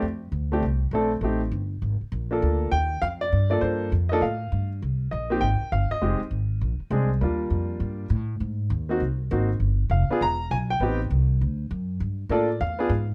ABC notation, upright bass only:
X:1
M:4/4
L:1/8
Q:"Swing" 1/4=200
K:Gm
V:1 name="Upright bass" clef=bass
F,,2 D,,2 C,,2 B,,,2 | A,,,2 G,,,2 _A,,, z B,,,2 | D,,2 E,,2 F,,2 G,,2 | G,,2 F,,2 A,,2 G,,2 |
C,,2 B,,,2 _A,,, z G,,, z | F,,, z _A,,,2 B,,, z C,,2 | E,,2 F,,2 G,,2 A,,2 | _A,,2 E,,2 C,,2 _A,,,2 |
G,,,2 F,,, z =E,,,2 =B,,,2 | A,,,2 C,,2 D,,2 ^F,,2 | G,,2 A,,2 =E,,2 ^G,,2 |]